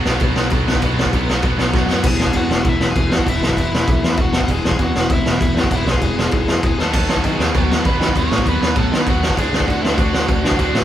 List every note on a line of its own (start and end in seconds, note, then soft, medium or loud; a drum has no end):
0.05 0.20 B1 medium
0.05 0.22 B2 medium
0.05 0.23 F#3 medium
0.05 0.24 B3 medium
0.05 snare loud
0.20 0.35 B1 medium
0.20 0.39 B2 medium
0.20 kick loud
0.20 crash medium
0.24 0.38 F#3 loud
0.24 0.38 B3 loud
0.36 0.51 B1 loud
0.36 0.52 B2 medium
0.36 0.52 F#3 medium
0.36 0.54 B3 loud
0.36 snare loud
0.50 0.66 B1 loud
0.50 0.68 B2 loud
0.50 0.67 F#3 loud
0.50 0.66 B3 loud
0.50 kick loud
0.50 crash medium
0.67 0.81 B1 medium
0.67 0.81 B2 medium
0.67 0.82 F#3 medium
0.67 0.82 B3 loud
0.67 snare loud
0.75 kick medium
0.82 1.11 B1 loud
0.82 0.98 B2 loud
0.82 0.97 F#3 loud
0.82 0.97 B3 loud
0.82 kick loud
0.82 crash medium
0.98 1.11 B2 medium
0.98 1.12 F#3 medium
0.98 1.12 B3 loud
0.98 snare loud
1.05 kick medium
1.12 1.41 B1 medium
1.12 1.27 B2 loud
1.12 1.26 F#3 loud
1.12 1.26 B3 loud
1.12 kick loud
1.12 crash medium
1.27 1.41 B2 medium
1.27 1.41 F#3 medium
1.27 1.42 B3 loud
1.27 snare loud
1.42 1.56 B1 medium
1.42 1.57 B2 medium
1.42 1.57 F#3 medium
1.42 1.56 B3 medium
1.42 kick loud
1.42 crash medium
1.56 1.71 B1 medium
1.56 1.71 B2 medium
1.56 1.71 F#3 medium
1.56 1.72 B3 loud
1.56 snare loud
1.72 1.86 B1 medium
1.72 1.88 B2 loud
1.72 1.87 F#3 loud
1.72 1.87 B3 loud
1.72 2.03 F#4 medium
1.72 kick loud
1.72 snare medium
1.76 2.06 F#5 medium
1.86 2.02 F#2 loud
1.86 2.03 B2 medium
1.86 2.03 F#3 medium
1.86 2.03 B3 loud
1.86 snare loud
2.02 2.16 E1 medium
2.02 3.14 E2 loud
2.02 3.10 B2 loud
2.02 3.10 E3 loud
2.02 kick loud
2.02 crash loud
2.02 crash medium
2.07 2.20 G#4 medium
2.07 2.21 G#5 loud
2.17 2.31 E1 medium
2.17 snare loud
2.22 2.35 G#4 medium
2.22 2.35 G#5 medium
2.27 kick medium
2.33 2.47 E2 loud
2.33 2.51 F#5 medium
2.33 kick loud
2.33 crash medium
2.37 2.50 F#4 medium
2.49 2.62 E1 medium
2.49 2.66 F#4 medium
2.49 snare loud
2.54 2.68 F#5 medium
2.64 2.77 E1 loud
2.64 kick loud
2.64 crash medium
2.69 2.89 E4 medium
2.69 2.91 E5 loud
2.78 2.92 E1 medium
2.78 snare loud
2.90 3.10 G#4 medium
2.90 3.13 G#5 medium
2.96 3.08 E1 loud
2.96 kick loud
2.96 crash medium
3.10 3.23 E2 loud
3.10 3.26 B2 medium
3.10 3.29 E3 medium
3.10 3.27 F#4 medium
3.10 snare loud
3.14 3.25 E2 medium
3.14 3.29 F#5 medium
3.19 kick medium
3.26 3.39 E1 loud
3.26 4.36 E2 medium
3.26 4.33 B2 loud
3.26 4.33 E3 loud
3.26 3.42 E4 medium
3.26 3.42 E5 medium
3.26 kick loud
3.26 crash medium
3.41 3.54 B1 medium
3.41 4.15 E4 medium
3.41 4.22 E5 medium
3.41 snare loud
3.50 kick medium
3.57 3.69 E1 loud
3.57 kick loud
3.57 crash medium
3.73 3.85 E1 medium
3.73 snare loud
3.88 4.00 B1 loud
3.88 kick loud
3.88 crash medium
4.03 4.15 E2 medium
4.03 snare loud
4.17 4.43 E1 medium
4.17 4.41 F#4 medium
4.17 kick loud
4.17 crash medium
4.23 4.43 F#5 loud
4.33 4.49 E2 medium
4.33 4.48 B2 medium
4.33 4.52 E3 medium
4.33 snare loud
4.41 4.50 F#5 medium
4.41 kick medium
4.48 4.60 E1 loud
4.48 5.55 E2 loud
4.48 5.55 B2 loud
4.48 4.78 G#4 medium
4.48 4.81 G#5 loud
4.48 kick loud
4.48 crash medium
4.52 5.54 E3 loud
4.65 4.77 E1 medium
4.65 snare loud
4.71 kick medium
4.79 4.91 E2 medium
4.79 5.09 F#4 medium
4.79 kick loud
4.79 crash medium
4.84 5.12 F#5 loud
4.95 5.07 E1 medium
4.95 snare loud
5.10 5.22 E1 loud
5.10 5.31 E4 medium
5.10 5.35 E5 loud
5.10 kick loud
5.10 crash medium
5.26 5.38 E1 medium
5.26 snare loud
5.34 5.55 E4 medium
5.34 5.58 E5 medium
5.41 5.53 E1 loud
5.41 kick loud
5.41 crash medium
5.54 5.67 E2 loud
5.54 5.69 E2 medium
5.54 5.71 B2 medium
5.54 5.70 E3 medium
5.54 snare loud
5.60 5.72 F#4 medium
5.60 5.76 F#5 medium
5.60 kick medium
5.71 5.83 E1 loud
5.71 6.77 E2 medium
5.71 6.77 B2 loud
5.71 6.78 E3 loud
5.71 5.87 E4 medium
5.71 kick loud
5.71 crash medium
5.76 5.89 E5 loud
5.85 5.98 B1 medium
5.85 6.60 G#4 medium
5.85 snare loud
5.91 6.61 G#5 loud
5.91 kick medium
6.02 6.14 E1 medium
6.02 kick medium
6.02 crash medium
6.17 6.29 E1 medium
6.17 snare loud
6.31 6.44 B1 loud
6.31 kick loud
6.31 crash medium
6.48 6.60 E2 medium
6.48 snare loud
6.63 6.75 E1 medium
6.63 6.78 G#4 medium
6.63 6.79 G#5 loud
6.63 kick loud
6.63 crash medium
6.78 6.90 D#2 loud
6.78 7.84 B2 medium
6.78 7.86 F#3 loud
6.78 7.85 B3 loud
6.78 7.22 A4 medium
6.78 snare medium
6.83 7.26 A5 loud
6.92 7.06 D#2 loud
6.92 7.52 B2 loud
6.92 7.55 F#3 loud
6.92 7.54 B3 loud
6.92 kick loud
6.92 crash loud
6.92 crash medium
7.09 7.21 D#2 medium
7.09 snare loud
7.16 kick medium
7.24 7.36 D#3 medium
7.24 7.53 G#4 medium
7.24 7.56 G#5 loud
7.24 kick loud
7.24 crash medium
7.39 7.51 D#2 medium
7.39 snare loud
7.53 7.67 D#2 loud
7.53 8.12 B2 medium
7.53 8.16 F#3 medium
7.53 8.15 B3 medium
7.53 7.76 F#4 medium
7.53 kick loud
7.53 crash medium
7.57 7.79 F#5 loud
7.70 7.82 D#2 medium
7.70 snare loud
7.79 7.85 A4 medium
7.79 7.85 A5 loud
7.84 7.97 D#2 medium
7.84 7.99 B2 medium
7.84 8.01 F#3 medium
7.84 8.12 B4 medium
7.84 8.16 B5 loud
7.84 kick loud
7.84 crash medium
7.88 8.01 B3 medium
8.00 9.05 B2 medium
8.00 8.12 D#3 medium
8.00 9.07 F#3 loud
8.00 9.07 B3 loud
8.00 snare loud
8.08 kick medium
8.13 8.27 D#2 loud
8.13 8.72 B2 medium
8.13 8.75 F#3 loud
8.13 8.76 B3 loud
8.13 8.44 C#5 medium
8.13 kick loud
8.13 crash medium
8.18 8.48 C#6 loud
8.31 8.43 A2 medium
8.31 snare loud
8.38 kick medium
8.46 8.58 D#2 medium
8.46 8.75 B4 medium
8.46 8.78 B5 loud
8.46 kick loud
8.46 crash medium
8.61 8.73 D#2 medium
8.61 snare loud
8.74 8.88 A2 loud
8.74 9.34 B2 medium
8.74 9.36 F#3 medium
8.74 9.37 B3 medium
8.74 kick loud
8.74 crash medium
8.78 8.98 A4 medium
8.78 9.00 A5 loud
8.92 9.04 D#3 medium
8.92 snare loud
8.99 9.06 B4 medium
8.99 9.06 B5 loud
9.06 9.31 D#2 medium
9.06 9.21 B2 medium
9.06 9.38 F#3 medium
9.06 9.22 B3 loud
9.06 9.35 F#4 medium
9.06 9.35 F#5 loud
9.06 kick loud
9.06 crash medium
9.23 snare loud
9.30 kick medium
9.37 9.50 D2 loud
9.37 10.43 D3 medium
9.37 10.44 A3 loud
9.37 10.42 D4 loud
9.37 9.66 G#4 medium
9.37 9.67 G#5 loud
9.37 kick loud
9.37 crash medium
9.52 9.64 D2 medium
9.52 snare loud
9.60 kick medium
9.68 9.80 D3 loud
9.68 9.82 F#4 medium
9.68 9.83 F#5 loud
9.68 kick loud
9.68 crash medium
9.81 9.95 D2 medium
9.81 9.96 E4 medium
9.81 9.98 E5 loud
9.81 snare loud
9.96 10.10 D2 loud
9.96 10.56 D3 medium
9.96 10.58 A3 medium
9.96 10.58 D4 medium
9.96 10.84 F#4 medium
9.96 10.84 F#5 loud
9.96 kick loud
9.96 crash medium
10.13 10.26 D2 loud
10.13 snare loud
10.28 10.41 D2 medium
10.28 kick loud
10.28 crash medium
10.43 10.56 D3 loud
10.43 10.58 D3 medium
10.43 10.59 A3 medium
10.43 10.58 D4 medium
10.43 snare loud
10.51 kick medium
10.59 10.71 D2 loud
10.59 10.84 D3 loud
10.59 10.84 A3 medium
10.59 10.84 D4 loud
10.59 kick loud
10.59 crash medium
10.75 10.84 A2 medium
10.75 snare loud